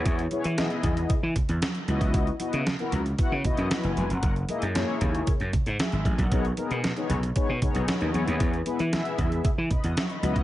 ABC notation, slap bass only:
X:1
M:4/4
L:1/16
Q:1/4=115
K:Elyd
V:1 name="Slap bass" clef=bass
E,,2 z E,2 z E,,2 z E, z E,, z2 C,,2- | C,,2 z C,2 z C,,2 z C, z F,, z F,,, E,,, ^E,,, | F,,,2 z F,,2 z D,,2 z F,, z G,, z G,,, =A,,, ^A,,, | B,,,2 z B,,2 z B,,,2 z B,, z B,,, z D,, E,, D,, |
E,,2 z E,2 z E,,2 z E, z E,, z2 C,,2 |]